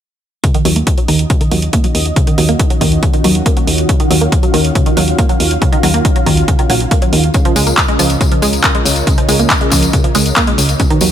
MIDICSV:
0, 0, Header, 1, 5, 480
1, 0, Start_track
1, 0, Key_signature, -6, "minor"
1, 0, Tempo, 431655
1, 487, Time_signature, 4, 2, 24, 8
1, 12363, End_track
2, 0, Start_track
2, 0, Title_t, "Analog synth pad"
2, 0, Program_c, 0, 89
2, 485, Note_on_c, 0, 61, 76
2, 485, Note_on_c, 0, 65, 72
2, 485, Note_on_c, 0, 75, 92
2, 486, Note_on_c, 0, 51, 81
2, 486, Note_on_c, 0, 66, 74
2, 4288, Note_off_c, 0, 75, 0
2, 4326, Note_on_c, 0, 77, 89
2, 8121, Note_off_c, 0, 61, 0
2, 8122, Note_off_c, 0, 51, 0
2, 8122, Note_off_c, 0, 66, 0
2, 8128, Note_off_c, 0, 77, 0
2, 8168, Note_on_c, 0, 75, 87
2, 8169, Note_on_c, 0, 49, 79
2, 8169, Note_on_c, 0, 61, 74
2, 8169, Note_on_c, 0, 70, 74
2, 11961, Note_off_c, 0, 65, 0
2, 11969, Note_off_c, 0, 49, 0
2, 11969, Note_off_c, 0, 61, 0
2, 11969, Note_off_c, 0, 70, 0
2, 11969, Note_off_c, 0, 75, 0
2, 12006, Note_on_c, 0, 66, 76
2, 12006, Note_on_c, 0, 73, 95
2, 12007, Note_on_c, 0, 51, 81
2, 12007, Note_on_c, 0, 63, 76
2, 12007, Note_on_c, 0, 71, 78
2, 12363, Note_off_c, 0, 51, 0
2, 12363, Note_off_c, 0, 63, 0
2, 12363, Note_off_c, 0, 66, 0
2, 12363, Note_off_c, 0, 71, 0
2, 12363, Note_off_c, 0, 73, 0
2, 12363, End_track
3, 0, Start_track
3, 0, Title_t, "Synth arpeggio sound"
3, 0, Program_c, 1, 84
3, 486, Note_on_c, 1, 49, 80
3, 559, Note_off_c, 1, 49, 0
3, 607, Note_on_c, 1, 51, 95
3, 716, Note_off_c, 1, 51, 0
3, 726, Note_on_c, 1, 54, 97
3, 799, Note_off_c, 1, 54, 0
3, 846, Note_on_c, 1, 58, 73
3, 956, Note_off_c, 1, 58, 0
3, 1087, Note_on_c, 1, 54, 73
3, 1160, Note_off_c, 1, 54, 0
3, 1206, Note_on_c, 1, 51, 97
3, 1316, Note_off_c, 1, 51, 0
3, 1445, Note_on_c, 1, 49, 84
3, 1519, Note_off_c, 1, 49, 0
3, 1566, Note_on_c, 1, 51, 75
3, 1639, Note_off_c, 1, 51, 0
3, 1686, Note_on_c, 1, 54, 101
3, 1759, Note_off_c, 1, 54, 0
3, 1926, Note_on_c, 1, 58, 79
3, 2036, Note_off_c, 1, 58, 0
3, 2046, Note_on_c, 1, 54, 76
3, 2119, Note_off_c, 1, 54, 0
3, 2406, Note_on_c, 1, 49, 84
3, 2479, Note_off_c, 1, 49, 0
3, 2526, Note_on_c, 1, 51, 101
3, 2635, Note_off_c, 1, 51, 0
3, 2646, Note_on_c, 1, 54, 100
3, 2719, Note_off_c, 1, 54, 0
3, 2766, Note_on_c, 1, 58, 74
3, 2875, Note_off_c, 1, 58, 0
3, 3006, Note_on_c, 1, 54, 75
3, 3079, Note_off_c, 1, 54, 0
3, 3126, Note_on_c, 1, 51, 99
3, 3236, Note_off_c, 1, 51, 0
3, 3367, Note_on_c, 1, 49, 83
3, 3440, Note_off_c, 1, 49, 0
3, 3487, Note_on_c, 1, 51, 79
3, 3560, Note_off_c, 1, 51, 0
3, 3607, Note_on_c, 1, 54, 98
3, 3680, Note_off_c, 1, 54, 0
3, 3848, Note_on_c, 1, 58, 83
3, 3956, Note_off_c, 1, 58, 0
3, 3967, Note_on_c, 1, 54, 74
3, 4040, Note_off_c, 1, 54, 0
3, 4327, Note_on_c, 1, 49, 83
3, 4400, Note_off_c, 1, 49, 0
3, 4447, Note_on_c, 1, 51, 99
3, 4556, Note_off_c, 1, 51, 0
3, 4566, Note_on_c, 1, 54, 97
3, 4639, Note_off_c, 1, 54, 0
3, 4686, Note_on_c, 1, 58, 73
3, 4795, Note_off_c, 1, 58, 0
3, 4925, Note_on_c, 1, 54, 73
3, 4999, Note_off_c, 1, 54, 0
3, 5045, Note_on_c, 1, 51, 99
3, 5155, Note_off_c, 1, 51, 0
3, 5285, Note_on_c, 1, 49, 84
3, 5359, Note_off_c, 1, 49, 0
3, 5406, Note_on_c, 1, 51, 79
3, 5479, Note_off_c, 1, 51, 0
3, 5525, Note_on_c, 1, 54, 100
3, 5599, Note_off_c, 1, 54, 0
3, 5766, Note_on_c, 1, 58, 78
3, 5876, Note_off_c, 1, 58, 0
3, 5886, Note_on_c, 1, 54, 75
3, 5959, Note_off_c, 1, 54, 0
3, 6246, Note_on_c, 1, 49, 81
3, 6319, Note_off_c, 1, 49, 0
3, 6365, Note_on_c, 1, 51, 95
3, 6475, Note_off_c, 1, 51, 0
3, 6486, Note_on_c, 1, 54, 100
3, 6559, Note_off_c, 1, 54, 0
3, 6606, Note_on_c, 1, 58, 75
3, 6716, Note_off_c, 1, 58, 0
3, 6846, Note_on_c, 1, 54, 76
3, 6919, Note_off_c, 1, 54, 0
3, 6966, Note_on_c, 1, 51, 97
3, 7076, Note_off_c, 1, 51, 0
3, 7206, Note_on_c, 1, 49, 85
3, 7279, Note_off_c, 1, 49, 0
3, 7327, Note_on_c, 1, 51, 78
3, 7400, Note_off_c, 1, 51, 0
3, 7446, Note_on_c, 1, 54, 104
3, 7519, Note_off_c, 1, 54, 0
3, 7686, Note_on_c, 1, 58, 78
3, 7796, Note_off_c, 1, 58, 0
3, 7806, Note_on_c, 1, 54, 73
3, 7879, Note_off_c, 1, 54, 0
3, 8166, Note_on_c, 1, 49, 82
3, 8239, Note_off_c, 1, 49, 0
3, 8286, Note_on_c, 1, 53, 100
3, 8396, Note_off_c, 1, 53, 0
3, 8406, Note_on_c, 1, 56, 98
3, 8479, Note_off_c, 1, 56, 0
3, 8527, Note_on_c, 1, 58, 73
3, 8636, Note_off_c, 1, 58, 0
3, 8767, Note_on_c, 1, 56, 78
3, 8840, Note_off_c, 1, 56, 0
3, 8887, Note_on_c, 1, 53, 100
3, 8996, Note_off_c, 1, 53, 0
3, 9127, Note_on_c, 1, 49, 85
3, 9200, Note_off_c, 1, 49, 0
3, 9247, Note_on_c, 1, 53, 80
3, 9320, Note_off_c, 1, 53, 0
3, 9367, Note_on_c, 1, 56, 104
3, 9440, Note_off_c, 1, 56, 0
3, 9607, Note_on_c, 1, 58, 81
3, 9716, Note_off_c, 1, 58, 0
3, 9727, Note_on_c, 1, 56, 75
3, 9800, Note_off_c, 1, 56, 0
3, 10086, Note_on_c, 1, 49, 82
3, 10159, Note_off_c, 1, 49, 0
3, 10207, Note_on_c, 1, 53, 96
3, 10316, Note_off_c, 1, 53, 0
3, 10327, Note_on_c, 1, 56, 97
3, 10400, Note_off_c, 1, 56, 0
3, 10447, Note_on_c, 1, 58, 74
3, 10556, Note_off_c, 1, 58, 0
3, 10687, Note_on_c, 1, 56, 75
3, 10760, Note_off_c, 1, 56, 0
3, 10807, Note_on_c, 1, 53, 97
3, 10916, Note_off_c, 1, 53, 0
3, 11046, Note_on_c, 1, 49, 85
3, 11119, Note_off_c, 1, 49, 0
3, 11167, Note_on_c, 1, 53, 81
3, 11240, Note_off_c, 1, 53, 0
3, 11286, Note_on_c, 1, 56, 102
3, 11359, Note_off_c, 1, 56, 0
3, 11526, Note_on_c, 1, 58, 81
3, 11636, Note_off_c, 1, 58, 0
3, 11647, Note_on_c, 1, 56, 76
3, 11720, Note_off_c, 1, 56, 0
3, 12006, Note_on_c, 1, 49, 83
3, 12079, Note_off_c, 1, 49, 0
3, 12126, Note_on_c, 1, 51, 100
3, 12236, Note_off_c, 1, 51, 0
3, 12246, Note_on_c, 1, 54, 101
3, 12319, Note_off_c, 1, 54, 0
3, 12363, End_track
4, 0, Start_track
4, 0, Title_t, "FM bass"
4, 0, Program_c, 2, 39
4, 725, Note_on_c, 2, 39, 92
4, 919, Note_off_c, 2, 39, 0
4, 1206, Note_on_c, 2, 39, 87
4, 1399, Note_off_c, 2, 39, 0
4, 1686, Note_on_c, 2, 39, 86
4, 1879, Note_off_c, 2, 39, 0
4, 2166, Note_on_c, 2, 39, 86
4, 2359, Note_off_c, 2, 39, 0
4, 2646, Note_on_c, 2, 39, 95
4, 2840, Note_off_c, 2, 39, 0
4, 3126, Note_on_c, 2, 39, 86
4, 3320, Note_off_c, 2, 39, 0
4, 3606, Note_on_c, 2, 39, 88
4, 3800, Note_off_c, 2, 39, 0
4, 4085, Note_on_c, 2, 39, 85
4, 4279, Note_off_c, 2, 39, 0
4, 4565, Note_on_c, 2, 39, 95
4, 4759, Note_off_c, 2, 39, 0
4, 5046, Note_on_c, 2, 39, 92
4, 5240, Note_off_c, 2, 39, 0
4, 5527, Note_on_c, 2, 39, 88
4, 5720, Note_off_c, 2, 39, 0
4, 6006, Note_on_c, 2, 39, 87
4, 6200, Note_off_c, 2, 39, 0
4, 6487, Note_on_c, 2, 39, 92
4, 6680, Note_off_c, 2, 39, 0
4, 6966, Note_on_c, 2, 39, 87
4, 7160, Note_off_c, 2, 39, 0
4, 7447, Note_on_c, 2, 34, 81
4, 7640, Note_off_c, 2, 34, 0
4, 7926, Note_on_c, 2, 39, 102
4, 8120, Note_off_c, 2, 39, 0
4, 8406, Note_on_c, 2, 37, 91
4, 8600, Note_off_c, 2, 37, 0
4, 8887, Note_on_c, 2, 37, 88
4, 9080, Note_off_c, 2, 37, 0
4, 9366, Note_on_c, 2, 37, 88
4, 9560, Note_off_c, 2, 37, 0
4, 9847, Note_on_c, 2, 37, 90
4, 10040, Note_off_c, 2, 37, 0
4, 10326, Note_on_c, 2, 37, 95
4, 10520, Note_off_c, 2, 37, 0
4, 10806, Note_on_c, 2, 37, 86
4, 11000, Note_off_c, 2, 37, 0
4, 11287, Note_on_c, 2, 37, 86
4, 11480, Note_off_c, 2, 37, 0
4, 11766, Note_on_c, 2, 37, 86
4, 11960, Note_off_c, 2, 37, 0
4, 12246, Note_on_c, 2, 39, 96
4, 12363, Note_off_c, 2, 39, 0
4, 12363, End_track
5, 0, Start_track
5, 0, Title_t, "Drums"
5, 485, Note_on_c, 9, 42, 88
5, 486, Note_on_c, 9, 36, 114
5, 596, Note_off_c, 9, 42, 0
5, 597, Note_off_c, 9, 36, 0
5, 605, Note_on_c, 9, 42, 54
5, 716, Note_off_c, 9, 42, 0
5, 725, Note_on_c, 9, 46, 104
5, 836, Note_off_c, 9, 46, 0
5, 845, Note_on_c, 9, 42, 50
5, 956, Note_off_c, 9, 42, 0
5, 965, Note_on_c, 9, 42, 92
5, 966, Note_on_c, 9, 36, 111
5, 1077, Note_off_c, 9, 36, 0
5, 1077, Note_off_c, 9, 42, 0
5, 1085, Note_on_c, 9, 42, 50
5, 1196, Note_off_c, 9, 42, 0
5, 1205, Note_on_c, 9, 46, 88
5, 1316, Note_off_c, 9, 46, 0
5, 1325, Note_on_c, 9, 42, 53
5, 1436, Note_off_c, 9, 42, 0
5, 1445, Note_on_c, 9, 36, 114
5, 1445, Note_on_c, 9, 42, 91
5, 1556, Note_off_c, 9, 42, 0
5, 1557, Note_off_c, 9, 36, 0
5, 1565, Note_on_c, 9, 42, 50
5, 1676, Note_off_c, 9, 42, 0
5, 1685, Note_on_c, 9, 46, 97
5, 1796, Note_off_c, 9, 46, 0
5, 1805, Note_on_c, 9, 42, 50
5, 1916, Note_off_c, 9, 42, 0
5, 1924, Note_on_c, 9, 42, 96
5, 1926, Note_on_c, 9, 36, 110
5, 2036, Note_off_c, 9, 42, 0
5, 2037, Note_off_c, 9, 36, 0
5, 2045, Note_on_c, 9, 42, 51
5, 2156, Note_off_c, 9, 42, 0
5, 2166, Note_on_c, 9, 46, 90
5, 2277, Note_off_c, 9, 46, 0
5, 2286, Note_on_c, 9, 42, 53
5, 2397, Note_off_c, 9, 42, 0
5, 2406, Note_on_c, 9, 36, 118
5, 2406, Note_on_c, 9, 42, 85
5, 2517, Note_off_c, 9, 36, 0
5, 2517, Note_off_c, 9, 42, 0
5, 2526, Note_on_c, 9, 42, 52
5, 2637, Note_off_c, 9, 42, 0
5, 2646, Note_on_c, 9, 46, 105
5, 2757, Note_off_c, 9, 46, 0
5, 2766, Note_on_c, 9, 42, 47
5, 2877, Note_off_c, 9, 42, 0
5, 2885, Note_on_c, 9, 42, 96
5, 2886, Note_on_c, 9, 36, 116
5, 2997, Note_off_c, 9, 36, 0
5, 2997, Note_off_c, 9, 42, 0
5, 3006, Note_on_c, 9, 42, 50
5, 3117, Note_off_c, 9, 42, 0
5, 3126, Note_on_c, 9, 36, 60
5, 3126, Note_on_c, 9, 46, 91
5, 3237, Note_off_c, 9, 36, 0
5, 3237, Note_off_c, 9, 46, 0
5, 3246, Note_on_c, 9, 42, 52
5, 3357, Note_off_c, 9, 42, 0
5, 3366, Note_on_c, 9, 36, 121
5, 3366, Note_on_c, 9, 42, 89
5, 3477, Note_off_c, 9, 36, 0
5, 3477, Note_off_c, 9, 42, 0
5, 3486, Note_on_c, 9, 42, 49
5, 3597, Note_off_c, 9, 42, 0
5, 3606, Note_on_c, 9, 46, 108
5, 3717, Note_off_c, 9, 46, 0
5, 3726, Note_on_c, 9, 42, 49
5, 3837, Note_off_c, 9, 42, 0
5, 3846, Note_on_c, 9, 36, 117
5, 3846, Note_on_c, 9, 42, 89
5, 3957, Note_off_c, 9, 36, 0
5, 3957, Note_off_c, 9, 42, 0
5, 3966, Note_on_c, 9, 42, 50
5, 4077, Note_off_c, 9, 42, 0
5, 4086, Note_on_c, 9, 46, 90
5, 4197, Note_off_c, 9, 46, 0
5, 4206, Note_on_c, 9, 42, 50
5, 4317, Note_off_c, 9, 42, 0
5, 4326, Note_on_c, 9, 36, 120
5, 4326, Note_on_c, 9, 42, 87
5, 4437, Note_off_c, 9, 36, 0
5, 4437, Note_off_c, 9, 42, 0
5, 4446, Note_on_c, 9, 42, 50
5, 4557, Note_off_c, 9, 42, 0
5, 4566, Note_on_c, 9, 46, 108
5, 4677, Note_off_c, 9, 46, 0
5, 4687, Note_on_c, 9, 42, 46
5, 4798, Note_off_c, 9, 42, 0
5, 4806, Note_on_c, 9, 36, 121
5, 4806, Note_on_c, 9, 42, 90
5, 4917, Note_off_c, 9, 36, 0
5, 4917, Note_off_c, 9, 42, 0
5, 4926, Note_on_c, 9, 42, 50
5, 5038, Note_off_c, 9, 42, 0
5, 5046, Note_on_c, 9, 46, 94
5, 5157, Note_off_c, 9, 46, 0
5, 5166, Note_on_c, 9, 42, 53
5, 5277, Note_off_c, 9, 42, 0
5, 5286, Note_on_c, 9, 36, 119
5, 5286, Note_on_c, 9, 42, 89
5, 5397, Note_off_c, 9, 36, 0
5, 5397, Note_off_c, 9, 42, 0
5, 5406, Note_on_c, 9, 42, 51
5, 5517, Note_off_c, 9, 42, 0
5, 5526, Note_on_c, 9, 46, 106
5, 5637, Note_off_c, 9, 46, 0
5, 5646, Note_on_c, 9, 42, 48
5, 5757, Note_off_c, 9, 42, 0
5, 5766, Note_on_c, 9, 36, 114
5, 5766, Note_on_c, 9, 42, 90
5, 5877, Note_off_c, 9, 36, 0
5, 5877, Note_off_c, 9, 42, 0
5, 5886, Note_on_c, 9, 42, 50
5, 5997, Note_off_c, 9, 42, 0
5, 6005, Note_on_c, 9, 46, 94
5, 6116, Note_off_c, 9, 46, 0
5, 6126, Note_on_c, 9, 42, 48
5, 6237, Note_off_c, 9, 42, 0
5, 6246, Note_on_c, 9, 36, 118
5, 6246, Note_on_c, 9, 42, 84
5, 6357, Note_off_c, 9, 36, 0
5, 6357, Note_off_c, 9, 42, 0
5, 6366, Note_on_c, 9, 42, 48
5, 6478, Note_off_c, 9, 42, 0
5, 6486, Note_on_c, 9, 46, 107
5, 6597, Note_off_c, 9, 46, 0
5, 6606, Note_on_c, 9, 42, 46
5, 6717, Note_off_c, 9, 42, 0
5, 6726, Note_on_c, 9, 36, 117
5, 6726, Note_on_c, 9, 42, 88
5, 6837, Note_off_c, 9, 36, 0
5, 6837, Note_off_c, 9, 42, 0
5, 6847, Note_on_c, 9, 42, 47
5, 6958, Note_off_c, 9, 42, 0
5, 6966, Note_on_c, 9, 36, 59
5, 6966, Note_on_c, 9, 46, 90
5, 7077, Note_off_c, 9, 36, 0
5, 7077, Note_off_c, 9, 46, 0
5, 7086, Note_on_c, 9, 42, 50
5, 7198, Note_off_c, 9, 42, 0
5, 7206, Note_on_c, 9, 36, 115
5, 7207, Note_on_c, 9, 42, 86
5, 7317, Note_off_c, 9, 36, 0
5, 7318, Note_off_c, 9, 42, 0
5, 7327, Note_on_c, 9, 42, 50
5, 7438, Note_off_c, 9, 42, 0
5, 7446, Note_on_c, 9, 46, 103
5, 7557, Note_off_c, 9, 46, 0
5, 7566, Note_on_c, 9, 42, 49
5, 7677, Note_off_c, 9, 42, 0
5, 7686, Note_on_c, 9, 36, 116
5, 7686, Note_on_c, 9, 42, 87
5, 7797, Note_off_c, 9, 36, 0
5, 7797, Note_off_c, 9, 42, 0
5, 7806, Note_on_c, 9, 42, 50
5, 7917, Note_off_c, 9, 42, 0
5, 7925, Note_on_c, 9, 46, 93
5, 8036, Note_off_c, 9, 46, 0
5, 8046, Note_on_c, 9, 42, 48
5, 8158, Note_off_c, 9, 42, 0
5, 8159, Note_on_c, 9, 54, 38
5, 8166, Note_on_c, 9, 36, 116
5, 8167, Note_on_c, 9, 42, 86
5, 8270, Note_off_c, 9, 54, 0
5, 8277, Note_off_c, 9, 36, 0
5, 8278, Note_off_c, 9, 42, 0
5, 8286, Note_on_c, 9, 42, 50
5, 8397, Note_off_c, 9, 42, 0
5, 8406, Note_on_c, 9, 46, 101
5, 8406, Note_on_c, 9, 54, 80
5, 8517, Note_off_c, 9, 46, 0
5, 8517, Note_off_c, 9, 54, 0
5, 8526, Note_on_c, 9, 42, 48
5, 8526, Note_on_c, 9, 54, 53
5, 8637, Note_off_c, 9, 42, 0
5, 8637, Note_off_c, 9, 54, 0
5, 8646, Note_on_c, 9, 36, 111
5, 8646, Note_on_c, 9, 39, 115
5, 8646, Note_on_c, 9, 42, 89
5, 8757, Note_off_c, 9, 36, 0
5, 8757, Note_off_c, 9, 39, 0
5, 8757, Note_off_c, 9, 42, 0
5, 8766, Note_on_c, 9, 42, 48
5, 8877, Note_off_c, 9, 42, 0
5, 8886, Note_on_c, 9, 46, 89
5, 8889, Note_on_c, 9, 54, 90
5, 8998, Note_off_c, 9, 46, 0
5, 9000, Note_off_c, 9, 54, 0
5, 9002, Note_on_c, 9, 54, 52
5, 9007, Note_on_c, 9, 42, 52
5, 9113, Note_off_c, 9, 54, 0
5, 9118, Note_off_c, 9, 42, 0
5, 9126, Note_on_c, 9, 36, 119
5, 9126, Note_on_c, 9, 42, 89
5, 9133, Note_on_c, 9, 54, 41
5, 9237, Note_off_c, 9, 36, 0
5, 9237, Note_off_c, 9, 42, 0
5, 9244, Note_off_c, 9, 54, 0
5, 9246, Note_on_c, 9, 42, 49
5, 9357, Note_off_c, 9, 42, 0
5, 9366, Note_on_c, 9, 46, 102
5, 9369, Note_on_c, 9, 54, 88
5, 9477, Note_off_c, 9, 46, 0
5, 9481, Note_off_c, 9, 54, 0
5, 9482, Note_on_c, 9, 54, 52
5, 9486, Note_on_c, 9, 42, 48
5, 9593, Note_off_c, 9, 54, 0
5, 9597, Note_off_c, 9, 42, 0
5, 9603, Note_on_c, 9, 54, 40
5, 9606, Note_on_c, 9, 36, 114
5, 9606, Note_on_c, 9, 39, 112
5, 9606, Note_on_c, 9, 42, 88
5, 9714, Note_off_c, 9, 54, 0
5, 9717, Note_off_c, 9, 36, 0
5, 9717, Note_off_c, 9, 39, 0
5, 9717, Note_off_c, 9, 42, 0
5, 9727, Note_on_c, 9, 42, 49
5, 9838, Note_off_c, 9, 42, 0
5, 9846, Note_on_c, 9, 46, 88
5, 9850, Note_on_c, 9, 54, 89
5, 9958, Note_off_c, 9, 46, 0
5, 9960, Note_off_c, 9, 54, 0
5, 9960, Note_on_c, 9, 54, 52
5, 9966, Note_on_c, 9, 42, 48
5, 10072, Note_off_c, 9, 54, 0
5, 10078, Note_off_c, 9, 42, 0
5, 10086, Note_on_c, 9, 36, 111
5, 10086, Note_on_c, 9, 42, 88
5, 10090, Note_on_c, 9, 54, 37
5, 10197, Note_off_c, 9, 36, 0
5, 10197, Note_off_c, 9, 42, 0
5, 10201, Note_off_c, 9, 54, 0
5, 10206, Note_on_c, 9, 42, 51
5, 10317, Note_off_c, 9, 42, 0
5, 10326, Note_on_c, 9, 46, 103
5, 10326, Note_on_c, 9, 54, 84
5, 10437, Note_off_c, 9, 46, 0
5, 10437, Note_off_c, 9, 54, 0
5, 10446, Note_on_c, 9, 42, 50
5, 10450, Note_on_c, 9, 54, 45
5, 10557, Note_off_c, 9, 42, 0
5, 10561, Note_off_c, 9, 54, 0
5, 10565, Note_on_c, 9, 39, 114
5, 10565, Note_on_c, 9, 42, 93
5, 10566, Note_on_c, 9, 36, 108
5, 10576, Note_on_c, 9, 54, 36
5, 10677, Note_off_c, 9, 36, 0
5, 10677, Note_off_c, 9, 39, 0
5, 10677, Note_off_c, 9, 42, 0
5, 10686, Note_on_c, 9, 42, 50
5, 10688, Note_off_c, 9, 54, 0
5, 10797, Note_off_c, 9, 42, 0
5, 10804, Note_on_c, 9, 54, 92
5, 10805, Note_on_c, 9, 39, 34
5, 10805, Note_on_c, 9, 46, 88
5, 10806, Note_on_c, 9, 36, 55
5, 10915, Note_off_c, 9, 54, 0
5, 10916, Note_off_c, 9, 39, 0
5, 10916, Note_off_c, 9, 46, 0
5, 10917, Note_off_c, 9, 36, 0
5, 10926, Note_on_c, 9, 42, 51
5, 10930, Note_on_c, 9, 54, 56
5, 11037, Note_off_c, 9, 42, 0
5, 11041, Note_off_c, 9, 54, 0
5, 11045, Note_on_c, 9, 42, 91
5, 11046, Note_on_c, 9, 36, 109
5, 11047, Note_on_c, 9, 54, 37
5, 11157, Note_off_c, 9, 36, 0
5, 11157, Note_off_c, 9, 42, 0
5, 11158, Note_off_c, 9, 54, 0
5, 11165, Note_on_c, 9, 42, 50
5, 11277, Note_off_c, 9, 42, 0
5, 11283, Note_on_c, 9, 54, 84
5, 11285, Note_on_c, 9, 46, 97
5, 11394, Note_off_c, 9, 54, 0
5, 11396, Note_off_c, 9, 46, 0
5, 11405, Note_on_c, 9, 42, 52
5, 11410, Note_on_c, 9, 54, 47
5, 11516, Note_off_c, 9, 42, 0
5, 11521, Note_off_c, 9, 54, 0
5, 11525, Note_on_c, 9, 39, 113
5, 11525, Note_on_c, 9, 42, 91
5, 11526, Note_on_c, 9, 36, 110
5, 11636, Note_off_c, 9, 39, 0
5, 11636, Note_off_c, 9, 42, 0
5, 11637, Note_off_c, 9, 36, 0
5, 11645, Note_on_c, 9, 42, 52
5, 11757, Note_off_c, 9, 42, 0
5, 11765, Note_on_c, 9, 46, 91
5, 11772, Note_on_c, 9, 54, 90
5, 11876, Note_off_c, 9, 46, 0
5, 11883, Note_off_c, 9, 54, 0
5, 11886, Note_on_c, 9, 42, 50
5, 11890, Note_on_c, 9, 54, 53
5, 11997, Note_off_c, 9, 42, 0
5, 12001, Note_off_c, 9, 54, 0
5, 12005, Note_on_c, 9, 42, 91
5, 12006, Note_on_c, 9, 36, 107
5, 12010, Note_on_c, 9, 54, 38
5, 12116, Note_off_c, 9, 42, 0
5, 12117, Note_off_c, 9, 36, 0
5, 12121, Note_off_c, 9, 54, 0
5, 12125, Note_on_c, 9, 42, 56
5, 12237, Note_off_c, 9, 42, 0
5, 12240, Note_on_c, 9, 54, 85
5, 12245, Note_on_c, 9, 46, 99
5, 12351, Note_off_c, 9, 54, 0
5, 12356, Note_off_c, 9, 46, 0
5, 12363, End_track
0, 0, End_of_file